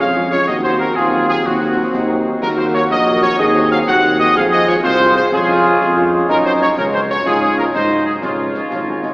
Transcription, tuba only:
0.00 0.36 F2 loud
0.48 0.88 D#2 loud
0.97 1.37 D#2 loud
1.45 1.85 D#2 loud
1.94 2.34 D#2 loud
2.42 2.82 D#2 medium
2.90 3.31 A#1 medium
3.39 3.79 D#2 loud
3.87 4.27 D#2 loud
4.35 4.76 F2 loud
4.84 5.24 C2 loud
5.32 5.73 F2 loud
5.81 6.21 F2 loud
6.29 6.69 F#2 loud
6.77 7.18 C#2 loud
7.25 7.62 G#2 medium
7.74 8.14 G#2 medium
8.22 8.63 C#2 medium
8.70 9.11 G#1 medium

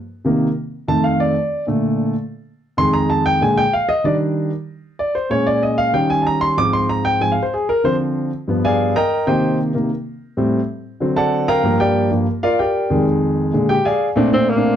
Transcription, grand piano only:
0.25 0.46 C3 medium
0.25 0.46 D#3 medium
0.25 0.47 A#3 medium
0.88 1.33 F2 medium
0.88 1.33 D#3 soft
0.88 1.34 A3 medium
0.88 1.04 A5 medium
1.04 1.19 F5 medium
1.20 1.64 D5 medium
1.67 2.12 A#2 medium
1.67 2.12 D3 medium
1.67 2.13 A3 medium
2.77 3.38 F2 medium
2.77 3.38 D#3 medium
2.77 3.38 G#3 medium
2.77 2.93 C6 loud
2.93 3.09 A#5 medium
3.10 3.25 A5 medium
3.26 3.41 G5 loud
3.41 3.62 A#2 medium
3.41 3.62 D3 soft
3.41 3.63 G#3 medium
3.41 3.57 G#5 medium
3.57 3.73 G5 loud
3.73 3.88 F5 medium
3.89 4.04 D#5 loud
4.04 4.49 D#3 medium
4.04 4.50 G3 medium
4.04 4.50 D4 medium
4.04 4.14 D5 medium
4.99 5.15 D5 medium
5.15 5.30 C5 medium
5.30 5.91 A#2 medium
5.30 5.91 G#3 medium
5.30 5.91 C#4 medium
5.30 5.46 C#5 medium
5.47 5.62 D5 loud
5.63 5.78 D#5 medium
5.78 5.94 F5 loud
5.93 6.54 D#3 medium
5.93 6.54 G3 soft
5.93 6.55 C#4 medium
5.93 6.09 G5 medium
6.10 6.25 G#5 medium
6.22 6.24 A5 medium
6.27 6.42 A#5 medium
6.41 6.57 C6 loud
6.57 7.19 G#2 medium
6.57 7.19 F3 medium
6.57 7.20 C4 medium
6.57 6.73 D6 loud
6.73 6.89 C6 loud
6.89 7.05 A#5 medium
7.05 7.20 G5 loud
7.21 7.35 G#2 soft
7.21 7.35 F3 soft
7.21 7.35 C4 medium
7.21 7.32 G#5 loud
7.32 7.42 F5 medium
7.43 7.53 C5 medium
7.54 7.69 G#4 medium
7.69 7.84 A#4 medium
7.84 8.29 D3 medium
7.84 8.30 F3 medium
7.84 8.30 C4 medium
7.84 7.94 C5 medium
8.48 8.93 G2 medium
8.48 8.93 F3 soft
8.48 8.93 B3 medium
8.65 8.94 G#4 medium
8.65 8.94 D5 medium
8.65 8.94 F5 medium
8.65 8.94 G#5 medium
8.96 9.25 A#4 medium
8.96 9.25 D#5 medium
8.96 9.25 G5 medium
8.96 9.25 A#5 loud
9.27 9.72 C3 medium
9.27 9.72 D#3 soft
9.27 9.72 A#3 medium
9.27 9.57 G4 medium
9.27 9.57 C5 medium
9.27 9.57 D#5 medium
9.27 9.56 G5 medium
9.74 9.88 C3 soft
9.74 9.89 D#3 soft
9.74 9.89 A#3 medium
10.37 10.58 A2 medium
10.37 10.58 G3 medium
10.37 10.59 C4 medium
11.00 11.61 D3 medium
11.00 11.61 F#3 soft
11.00 11.61 C4 medium
11.16 11.46 A4 medium
11.16 11.46 D5 medium
11.16 11.46 F#5 medium
11.16 11.46 A5 medium
11.48 11.78 A#4 medium
11.48 11.78 F5 medium
11.48 11.78 G5 medium
11.48 11.78 A#5 loud
11.63 12.09 G2 medium
11.63 12.09 F3 medium
11.63 12.09 A#3 medium
11.80 12.09 G4 medium
11.80 12.09 A#4 medium
11.80 12.09 D5 medium
11.80 12.09 G5 medium
12.11 12.25 G2 medium
12.11 12.25 F3 soft
12.11 12.26 A#3 medium
12.43 12.59 F4 medium
12.43 12.58 A#4 medium
12.43 12.58 D5 medium
12.43 12.58 F5 loud
12.59 13.03 G4 medium
12.59 13.03 A#4 medium
12.59 13.03 D5 medium
12.59 13.03 G5 medium
12.90 13.50 F2 medium
12.90 13.50 D#3 medium
12.90 13.51 G#3 medium
13.53 13.74 A#2 medium
13.53 13.75 D3 medium
13.53 13.75 G#3 medium
13.69 13.85 G4 medium
13.69 13.85 G5 medium
13.85 14.07 G#4 medium
13.85 14.07 D5 medium
13.85 14.08 F5 medium
13.85 14.07 G#5 medium
14.16 14.27 A#2 medium
14.16 14.28 A3 medium
14.16 14.28 C4 medium
14.16 14.28 D4 medium
14.32 14.49 A#2 medium
14.32 14.49 A3 medium
14.32 14.49 C4 medium
14.32 14.49 D4 medium
14.55 14.76 A#2 medium
14.55 14.76 A3 medium
14.55 14.76 C4 medium
14.55 14.76 D4 medium

